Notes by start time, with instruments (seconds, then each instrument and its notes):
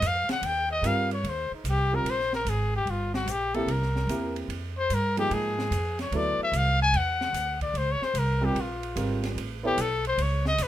0.01 upright bass F2, hi-hat pedal, ride
0.07 trumpet F5
0.29 trumpet F#5, muted upright bass stroke, snare, ride
0.42 upright bass D#2, ride
0.46 trumpet G5
0.72 trumpet D#5
0.82 upright bass G2, grand piano G3 C4 F4 A#4, hi-hat pedal, ride
0.87 trumpet F5
1.11 trumpet C#5, ride
1.23 upright bass D#2, ride
1.29 trumpet C5
1.51 trumpet D#4, muted upright bass stroke
1.64 upright bass C2, hi-hat pedal, ride
1.69 trumpet G4
1.92 grand piano G3 C4 F4 A#4, trumpet A#4
2.05 upright bass A#1, ride
2.10 trumpet C5
2.20 snare
2.33 trumpet A#4, snare
2.45 upright bass G#1, hi-hat pedal, ride
2.50 trumpet G#4
2.76 trumpet G4
2.86 upright bass G1, ride
2.90 trumpet F4
3.14 trumpet F#4, snare
3.26 upright bass A#1, hi-hat pedal, ride
3.31 trumpet G4
3.54 grand piano A#3 C4 E4 G4, trumpet A4, ride
3.67 upright bass C2, ride
3.71 trumpet A#4
3.82 snare
3.96 snare
4.07 upright bass E2, grand piano A#3 C4 E4 G4, hi-hat pedal, ride
4.36 ride
4.48 upright bass F2, ride
4.78 trumpet C5
4.90 upright bass G2, hi-hat pedal, ride
4.94 trumpet A#4
5.17 grand piano F3 A#3 D#4 G#4, trumpet G4, ride
5.30 upright bass G#2, trumpet G#4, ride
5.59 snare
5.71 upright bass F2, hi-hat pedal, ride
5.99 trumpet C#5, snare, ride
6.11 upright bass D2, grand piano F#3 B3 E4 A4, ride
6.17 trumpet D5
6.38 muted upright bass stroke
6.43 trumpet E5
6.52 upright bass C2, hi-hat pedal, ride
6.57 trumpet F5
6.82 trumpet G#5
6.93 upright bass E2, trumpet F#5, ride
7.21 snare
7.33 upright bass D2, hi-hat pedal, ride
7.61 trumpet D5, kick, ride
7.74 upright bass C#2, ride
7.78 trumpet C5
7.92 trumpet C#5
8.02 trumpet C5, snare
8.14 upright bass C2, hi-hat pedal, ride
8.18 trumpet A#4
8.41 grand piano G3 C4 F4 A#4, trumpet G4
8.55 upright bass A#1, ride
8.61 trumpet F4
8.83 ride
8.95 upright bass G#1, grand piano G3 C4 F4 A#4, hi-hat pedal, ride
9.24 snare, ride
9.35 upright bass A1, ride
9.63 grand piano B3 E4 A4 C#5, trumpet G4
9.77 upright bass B1, hi-hat pedal, ride
9.81 trumpet A4
10.05 trumpet C5, ride
10.18 upright bass C#2, ride
10.22 trumpet C#5
10.45 trumpet D#5, snare
10.58 upright bass E2, hi-hat pedal, ride
10.63 trumpet B4